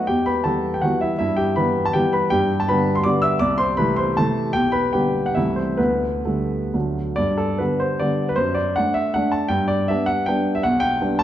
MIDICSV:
0, 0, Header, 1, 2, 480
1, 0, Start_track
1, 0, Key_signature, 1, "major"
1, 0, Tempo, 369004
1, 112, Time_signature, 3, 2, 24, 8
1, 4434, Tempo, 380711
1, 5874, Tempo, 417246
1, 7314, Tempo, 473560
1, 8274, Tempo, 418702
1, 9714, Tempo, 378549
1, 12594, Tempo, 364742
1, 13851, End_track
2, 0, Start_track
2, 0, Title_t, "Grand piano"
2, 0, Program_c, 0, 0
2, 94, Note_on_c, 0, 79, 76
2, 110, Note_on_c, 0, 67, 56
2, 116, Note_on_c, 0, 40, 49
2, 305, Control_c, 0, 64, 127
2, 332, Note_off_c, 0, 67, 0
2, 337, Note_on_c, 0, 83, 74
2, 340, Note_off_c, 0, 79, 0
2, 350, Note_on_c, 0, 71, 46
2, 569, Note_on_c, 0, 81, 67
2, 581, Note_off_c, 0, 71, 0
2, 584, Note_on_c, 0, 52, 31
2, 586, Note_off_c, 0, 40, 0
2, 592, Note_off_c, 0, 83, 0
2, 593, Note_on_c, 0, 55, 31
2, 593, Note_on_c, 0, 69, 50
2, 598, Note_on_c, 0, 59, 34
2, 937, Note_off_c, 0, 69, 0
2, 951, Note_off_c, 0, 81, 0
2, 962, Note_on_c, 0, 79, 64
2, 1025, Note_off_c, 0, 52, 0
2, 1030, Note_off_c, 0, 55, 0
2, 1033, Note_off_c, 0, 59, 0
2, 1060, Note_on_c, 0, 78, 68
2, 1080, Note_off_c, 0, 79, 0
2, 1081, Note_on_c, 0, 52, 41
2, 1084, Note_on_c, 0, 66, 55
2, 1092, Note_on_c, 0, 55, 37
2, 1093, Note_on_c, 0, 59, 41
2, 1099, Control_c, 0, 64, 0
2, 1296, Note_off_c, 0, 66, 0
2, 1300, Note_off_c, 0, 78, 0
2, 1313, Note_on_c, 0, 76, 66
2, 1319, Note_on_c, 0, 64, 50
2, 1494, Note_off_c, 0, 52, 0
2, 1500, Note_off_c, 0, 55, 0
2, 1500, Note_off_c, 0, 59, 0
2, 1523, Note_off_c, 0, 76, 0
2, 1528, Note_off_c, 0, 64, 0
2, 1542, Note_on_c, 0, 76, 79
2, 1558, Note_on_c, 0, 64, 61
2, 1563, Note_on_c, 0, 43, 48
2, 1768, Note_off_c, 0, 64, 0
2, 1776, Note_off_c, 0, 76, 0
2, 1776, Note_on_c, 0, 79, 71
2, 1788, Note_on_c, 0, 67, 58
2, 1798, Control_c, 0, 64, 127
2, 2013, Note_off_c, 0, 67, 0
2, 2021, Note_off_c, 0, 43, 0
2, 2024, Note_off_c, 0, 79, 0
2, 2028, Note_on_c, 0, 83, 73
2, 2041, Note_on_c, 0, 71, 58
2, 2043, Note_on_c, 0, 52, 35
2, 2060, Note_on_c, 0, 55, 37
2, 2060, Note_on_c, 0, 59, 39
2, 2390, Note_off_c, 0, 71, 0
2, 2409, Note_off_c, 0, 83, 0
2, 2413, Note_on_c, 0, 81, 78
2, 2491, Note_off_c, 0, 52, 0
2, 2501, Note_off_c, 0, 55, 0
2, 2501, Note_off_c, 0, 59, 0
2, 2516, Note_on_c, 0, 79, 80
2, 2534, Note_off_c, 0, 81, 0
2, 2534, Note_on_c, 0, 67, 56
2, 2539, Note_on_c, 0, 52, 39
2, 2542, Control_c, 0, 64, 0
2, 2550, Note_on_c, 0, 55, 42
2, 2550, Note_on_c, 0, 59, 48
2, 2757, Note_off_c, 0, 67, 0
2, 2765, Note_off_c, 0, 79, 0
2, 2769, Note_on_c, 0, 83, 73
2, 2777, Note_on_c, 0, 71, 59
2, 2962, Note_off_c, 0, 52, 0
2, 2968, Note_off_c, 0, 55, 0
2, 2968, Note_off_c, 0, 59, 0
2, 2991, Note_off_c, 0, 71, 0
2, 2996, Note_on_c, 0, 79, 87
2, 3003, Note_off_c, 0, 83, 0
2, 3013, Note_on_c, 0, 67, 58
2, 3016, Note_on_c, 0, 43, 54
2, 3235, Control_c, 0, 64, 127
2, 3341, Note_off_c, 0, 67, 0
2, 3357, Note_off_c, 0, 79, 0
2, 3379, Note_on_c, 0, 81, 71
2, 3479, Note_off_c, 0, 43, 0
2, 3492, Note_on_c, 0, 83, 77
2, 3496, Note_off_c, 0, 81, 0
2, 3500, Note_on_c, 0, 71, 60
2, 3509, Note_on_c, 0, 50, 36
2, 3517, Note_on_c, 0, 55, 38
2, 3519, Note_on_c, 0, 59, 40
2, 3832, Note_off_c, 0, 71, 0
2, 3843, Note_on_c, 0, 84, 76
2, 3853, Note_off_c, 0, 83, 0
2, 3930, Note_off_c, 0, 50, 0
2, 3935, Note_off_c, 0, 55, 0
2, 3935, Note_off_c, 0, 59, 0
2, 3949, Note_on_c, 0, 86, 88
2, 3962, Note_off_c, 0, 84, 0
2, 3974, Control_c, 0, 64, 0
2, 3974, Note_on_c, 0, 74, 61
2, 3977, Note_on_c, 0, 55, 43
2, 3978, Note_on_c, 0, 50, 48
2, 3986, Note_on_c, 0, 59, 50
2, 4185, Note_off_c, 0, 74, 0
2, 4186, Note_on_c, 0, 88, 83
2, 4189, Note_off_c, 0, 86, 0
2, 4206, Note_on_c, 0, 76, 61
2, 4393, Note_off_c, 0, 50, 0
2, 4393, Note_off_c, 0, 55, 0
2, 4397, Note_off_c, 0, 59, 0
2, 4416, Note_on_c, 0, 86, 95
2, 4421, Note_off_c, 0, 76, 0
2, 4428, Note_off_c, 0, 88, 0
2, 4433, Note_on_c, 0, 74, 65
2, 4439, Note_on_c, 0, 36, 55
2, 4647, Note_on_c, 0, 84, 89
2, 4653, Note_off_c, 0, 74, 0
2, 4661, Note_off_c, 0, 86, 0
2, 4662, Note_on_c, 0, 72, 61
2, 4688, Control_c, 0, 64, 127
2, 4891, Note_on_c, 0, 83, 76
2, 4896, Note_off_c, 0, 72, 0
2, 4904, Note_on_c, 0, 71, 61
2, 4907, Note_off_c, 0, 36, 0
2, 4907, Note_off_c, 0, 84, 0
2, 4908, Note_on_c, 0, 48, 38
2, 4915, Note_on_c, 0, 57, 42
2, 4918, Note_on_c, 0, 52, 40
2, 5135, Note_on_c, 0, 84, 76
2, 5141, Note_off_c, 0, 71, 0
2, 5152, Note_off_c, 0, 83, 0
2, 5155, Note_on_c, 0, 72, 59
2, 5350, Note_off_c, 0, 48, 0
2, 5354, Note_off_c, 0, 57, 0
2, 5355, Note_off_c, 0, 52, 0
2, 5382, Note_off_c, 0, 72, 0
2, 5389, Note_off_c, 0, 84, 0
2, 5393, Note_on_c, 0, 81, 81
2, 5407, Note_on_c, 0, 52, 45
2, 5410, Note_on_c, 0, 48, 46
2, 5411, Note_on_c, 0, 69, 57
2, 5414, Control_c, 0, 64, 0
2, 5421, Note_on_c, 0, 57, 52
2, 5828, Note_off_c, 0, 52, 0
2, 5830, Note_off_c, 0, 48, 0
2, 5836, Note_off_c, 0, 57, 0
2, 5844, Note_off_c, 0, 69, 0
2, 5849, Note_on_c, 0, 79, 91
2, 5868, Note_off_c, 0, 81, 0
2, 5871, Note_on_c, 0, 67, 60
2, 5873, Note_on_c, 0, 35, 49
2, 6068, Note_on_c, 0, 83, 74
2, 6076, Note_on_c, 0, 71, 63
2, 6077, Note_off_c, 0, 67, 0
2, 6077, Control_c, 0, 64, 127
2, 6082, Note_off_c, 0, 79, 0
2, 6303, Note_off_c, 0, 71, 0
2, 6307, Note_on_c, 0, 79, 70
2, 6315, Note_off_c, 0, 35, 0
2, 6316, Note_off_c, 0, 83, 0
2, 6318, Note_on_c, 0, 67, 52
2, 6321, Note_on_c, 0, 50, 36
2, 6327, Note_on_c, 0, 55, 37
2, 6331, Note_on_c, 0, 59, 40
2, 6664, Note_off_c, 0, 67, 0
2, 6685, Note_off_c, 0, 79, 0
2, 6690, Note_on_c, 0, 78, 69
2, 6768, Note_off_c, 0, 50, 0
2, 6770, Note_off_c, 0, 55, 0
2, 6773, Note_off_c, 0, 59, 0
2, 6790, Note_on_c, 0, 76, 73
2, 6805, Note_on_c, 0, 52, 33
2, 6807, Note_on_c, 0, 64, 54
2, 6810, Note_on_c, 0, 36, 47
2, 6814, Note_off_c, 0, 78, 0
2, 6816, Note_on_c, 0, 55, 32
2, 6827, Note_on_c, 0, 57, 34
2, 6832, Control_c, 0, 64, 0
2, 7034, Note_on_c, 0, 72, 59
2, 7040, Note_off_c, 0, 64, 0
2, 7044, Control_c, 0, 64, 127
2, 7049, Note_off_c, 0, 76, 0
2, 7051, Note_on_c, 0, 60, 42
2, 7261, Note_off_c, 0, 52, 0
2, 7266, Note_off_c, 0, 55, 0
2, 7272, Note_off_c, 0, 57, 0
2, 7282, Note_on_c, 0, 71, 65
2, 7290, Note_off_c, 0, 60, 0
2, 7292, Note_on_c, 0, 38, 46
2, 7294, Note_off_c, 0, 36, 0
2, 7296, Note_on_c, 0, 59, 54
2, 7299, Note_off_c, 0, 72, 0
2, 7330, Control_c, 0, 64, 0
2, 7536, Control_c, 0, 64, 127
2, 7753, Note_off_c, 0, 59, 0
2, 7770, Note_on_c, 0, 69, 45
2, 7771, Note_off_c, 0, 38, 0
2, 7780, Note_on_c, 0, 57, 33
2, 7781, Note_off_c, 0, 71, 0
2, 7784, Note_on_c, 0, 55, 31
2, 7785, Note_on_c, 0, 50, 29
2, 8227, Note_off_c, 0, 55, 0
2, 8228, Note_off_c, 0, 50, 0
2, 8232, Note_off_c, 0, 57, 0
2, 8259, Note_on_c, 0, 38, 40
2, 8261, Note_off_c, 0, 69, 0
2, 8261, Note_on_c, 0, 54, 31
2, 8264, Note_on_c, 0, 50, 31
2, 8272, Note_on_c, 0, 57, 31
2, 8285, Control_c, 0, 64, 0
2, 8522, Control_c, 0, 64, 127
2, 8716, Note_off_c, 0, 54, 0
2, 8718, Note_off_c, 0, 50, 0
2, 8723, Note_off_c, 0, 57, 0
2, 8742, Note_on_c, 0, 74, 80
2, 8746, Note_off_c, 0, 38, 0
2, 8765, Note_on_c, 0, 43, 49
2, 8783, Control_c, 0, 64, 0
2, 8969, Control_c, 0, 64, 127
2, 8990, Note_on_c, 0, 69, 68
2, 8992, Note_off_c, 0, 74, 0
2, 9230, Note_on_c, 0, 71, 62
2, 9234, Note_off_c, 0, 43, 0
2, 9243, Note_off_c, 0, 69, 0
2, 9248, Note_on_c, 0, 55, 35
2, 9250, Note_on_c, 0, 50, 36
2, 9255, Note_on_c, 0, 59, 40
2, 9265, Control_c, 0, 64, 0
2, 9475, Note_on_c, 0, 72, 68
2, 9480, Note_off_c, 0, 71, 0
2, 9666, Note_off_c, 0, 55, 0
2, 9667, Note_off_c, 0, 50, 0
2, 9669, Note_off_c, 0, 59, 0
2, 9702, Note_on_c, 0, 74, 71
2, 9705, Note_off_c, 0, 72, 0
2, 9711, Note_on_c, 0, 50, 40
2, 9715, Note_on_c, 0, 55, 39
2, 9720, Note_on_c, 0, 59, 41
2, 10056, Note_off_c, 0, 74, 0
2, 10073, Note_on_c, 0, 71, 73
2, 10131, Note_off_c, 0, 50, 0
2, 10133, Note_off_c, 0, 55, 0
2, 10136, Note_off_c, 0, 59, 0
2, 10159, Note_on_c, 0, 72, 83
2, 10180, Note_on_c, 0, 42, 51
2, 10184, Note_off_c, 0, 71, 0
2, 10399, Note_on_c, 0, 74, 74
2, 10412, Control_c, 0, 64, 127
2, 10413, Note_off_c, 0, 72, 0
2, 10666, Note_off_c, 0, 42, 0
2, 10666, Note_on_c, 0, 78, 84
2, 10668, Note_off_c, 0, 74, 0
2, 10687, Note_on_c, 0, 57, 36
2, 10692, Note_on_c, 0, 62, 39
2, 10700, Control_c, 0, 64, 0
2, 10899, Note_on_c, 0, 76, 78
2, 10922, Note_off_c, 0, 78, 0
2, 11120, Note_off_c, 0, 57, 0
2, 11122, Note_off_c, 0, 62, 0
2, 11149, Note_off_c, 0, 76, 0
2, 11151, Note_on_c, 0, 78, 81
2, 11169, Note_on_c, 0, 62, 53
2, 11171, Note_on_c, 0, 57, 46
2, 11375, Note_on_c, 0, 81, 73
2, 11390, Note_off_c, 0, 78, 0
2, 11581, Note_off_c, 0, 62, 0
2, 11582, Note_off_c, 0, 57, 0
2, 11589, Note_on_c, 0, 79, 84
2, 11607, Note_on_c, 0, 43, 59
2, 11614, Note_off_c, 0, 81, 0
2, 11833, Note_on_c, 0, 74, 83
2, 11838, Note_off_c, 0, 79, 0
2, 11847, Control_c, 0, 64, 127
2, 12079, Note_off_c, 0, 43, 0
2, 12092, Note_off_c, 0, 74, 0
2, 12092, Note_on_c, 0, 76, 79
2, 12112, Note_on_c, 0, 55, 41
2, 12115, Note_on_c, 0, 59, 39
2, 12121, Control_c, 0, 64, 0
2, 12124, Note_on_c, 0, 62, 42
2, 12322, Note_on_c, 0, 78, 85
2, 12350, Note_off_c, 0, 76, 0
2, 12549, Note_off_c, 0, 55, 0
2, 12551, Note_off_c, 0, 59, 0
2, 12556, Note_off_c, 0, 62, 0
2, 12575, Note_on_c, 0, 79, 80
2, 12577, Note_off_c, 0, 78, 0
2, 12594, Note_on_c, 0, 55, 44
2, 12601, Note_on_c, 0, 59, 45
2, 12606, Note_on_c, 0, 62, 52
2, 12941, Note_off_c, 0, 79, 0
2, 12952, Note_on_c, 0, 76, 74
2, 13021, Note_off_c, 0, 55, 0
2, 13025, Note_off_c, 0, 59, 0
2, 13028, Note_off_c, 0, 62, 0
2, 13064, Note_on_c, 0, 78, 83
2, 13069, Note_off_c, 0, 76, 0
2, 13078, Note_on_c, 0, 35, 55
2, 13283, Note_on_c, 0, 79, 92
2, 13286, Control_c, 0, 64, 127
2, 13304, Note_off_c, 0, 78, 0
2, 13539, Note_off_c, 0, 35, 0
2, 13561, Note_on_c, 0, 55, 42
2, 13567, Note_on_c, 0, 59, 43
2, 13570, Note_on_c, 0, 62, 46
2, 13783, Note_off_c, 0, 79, 0
2, 13794, Note_on_c, 0, 81, 91
2, 13851, Note_off_c, 0, 55, 0
2, 13851, Note_off_c, 0, 59, 0
2, 13851, Note_off_c, 0, 62, 0
2, 13851, Note_off_c, 0, 81, 0
2, 13851, End_track
0, 0, End_of_file